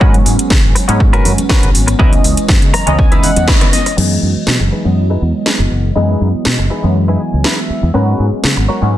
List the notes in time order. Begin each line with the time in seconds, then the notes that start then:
0.00 G#2 F#3 G#3 B3 C#4 F#4 A#4 B4, kick
0.14 closed hi-hat, tambourine, high conga
0.26 G#2, muted clean electric guitar stroke, open hi-hat, tambourine
0.39 muted fingered electric bass stroke, closed hi-hat, tambourine
0.50 C#3, kick, snare
0.64 G#1, tambourine
0.75 muted clean electric guitar stroke, muted fingered electric bass stroke, open hi-hat, tambourine, high conga
0.88 G#2 F#3 G#3 B3 C#4, muted clean electric guitar stroke, closed hi-hat, tambourine
1.00 muted clean electric guitar stroke, kick, tambourine
1.13 C#4 F#4 A#4 B4, closed hi-hat, tambourine
1.25 F#2, open hi-hat, tambourine, low conga
1.38 closed hi-hat, tambourine, high conga
1.49 C#4 F#4 A#4 B4, kick, cross-stick, snare
1.63 G#1, closed hi-hat, tambourine, low conga
1.74 G#1, open hi-hat, tambourine
1.87 muted clean electric guitar stroke, closed hi-hat, tambourine
1.99 C#2 E3 G#3 B3 C#4 D#4 E4 B4 D#5, kick, tambourine
2.12 closed hi-hat, tambourine, high conga
2.24 C#2, muted clean electric guitar stroke, open hi-hat, tambourine
2.37 muted fingered electric bass stroke, closed hi-hat, tambourine
2.49 F#2, kick, snare
2.62 C#3, closed hi-hat, tambourine
2.74 A#5, muted fingered electric bass stroke, muted clean electric guitar stroke, cross-stick, open hi-hat, tambourine, high conga
2.86 C#2 E3 G#3 B3 C#4 D#5, muted clean electric guitar stroke, closed hi-hat, tambourine, low conga
2.99 G#5, muted clean electric guitar stroke, kick, tambourine
3.12 D#4 E4 B4, closed hi-hat, tambourine
3.23 F#5, open hi-hat, tambourine, low conga
3.36 E2, closed hi-hat, tambourine, high conga
3.48 D#4 E4 B4 C#5, kick, snare, tambourine
3.61 cross-stick, closed hi-hat, tambourine, low conga
3.73 D#5, open hi-hat, tambourine
3.86 muted clean electric guitar stroke, open hi-hat, tambourine
3.97 F#2 E3 F#3 G#3 B3 D#4 E4 G#4 B4 D#5, crash
4.22 F#2
4.36 muted fingered electric bass stroke
4.47 B2, snare
4.60 F#1, muted clean electric guitar stroke
4.72 D#4 E4 G#4 B4, muted fingered electric bass stroke
4.84 F#2 E3 F#3 G#3 B3 D#5
4.97 muted clean electric guitar stroke
5.10 D#4 E4 G#4 B4
5.22 E2
5.34 muted clean electric guitar stroke
5.46 D#4 E4 G#4 B4, snare
5.60 F#1
5.71 F#1, muted clean electric guitar stroke
5.95 F#2 E3 F#3 G#3 B3 D#4 E4 G#4 B4 D#5
6.21 F#2
6.34 muted fingered electric bass stroke
6.45 B2, snare
6.59 F#1, muted clean electric guitar stroke
6.70 D#4 E4 G#4 B4
6.83 F#2 E3 F#3 G#3 B3
6.95 muted clean electric guitar stroke
7.08 D#4 E4 G#4 B4
7.20 G#5
7.33 C#2, muted clean electric guitar stroke
7.44 D#4 E4 G#4 B4 E5, snare
7.58 E5
7.70 muted clean electric guitar stroke, muted fingered electric bass stroke
7.83 E2
7.94 G#2 F#3 G#3 B3 C#4 F#4 A#4 B4
8.20 G#2
8.33 muted fingered electric bass stroke
8.44 C#3, snare
8.57 G#1, muted clean electric guitar stroke
8.69 C#4 F#4 A#4 C#5
8.81 G#2 F#3 G#3 B3 C#4
8.94 muted clean electric guitar stroke